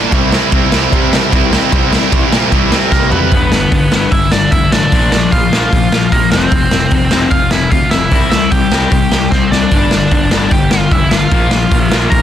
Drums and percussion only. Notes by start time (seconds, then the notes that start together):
0.12 kick, ride
0.32 snare
0.52 kick, ride
0.72 snare
0.92 kick, ride
1.13 snare
1.32 kick, ride
1.53 snare
1.72 kick, ride
1.93 snare
2.12 kick, ride
2.32 snare
2.52 kick, ride
2.72 snare
2.92 kick, snare
3.12 floor tom
3.32 kick, open hi-hat
3.52 snare
3.72 kick, open hi-hat
3.92 snare
4.12 kick, open hi-hat
4.32 snare
4.52 kick, open hi-hat
4.72 snare
4.92 kick, open hi-hat
5.12 snare
5.32 kick, open hi-hat
5.53 snare
5.73 kick, open hi-hat
5.92 snare
6.12 kick, open hi-hat
6.32 snare
6.52 kick, open hi-hat
6.71 snare
6.91 kick, open hi-hat
7.11 snare
7.31 kick, open hi-hat
7.51 snare
7.71 kick, open hi-hat
7.91 snare
8.11 kick, open hi-hat
8.32 snare
8.52 kick, open hi-hat
8.72 snare
8.92 kick, open hi-hat
9.12 snare
9.32 kick, snare
9.52 snare
9.71 kick, open hi-hat
9.91 snare
10.11 kick, open hi-hat
10.31 snare
10.51 kick, open hi-hat
10.71 snare
10.91 kick, open hi-hat
11.11 snare
11.31 kick, open hi-hat
11.51 snare
11.71 kick, open hi-hat
11.92 snare
12.12 kick, open hi-hat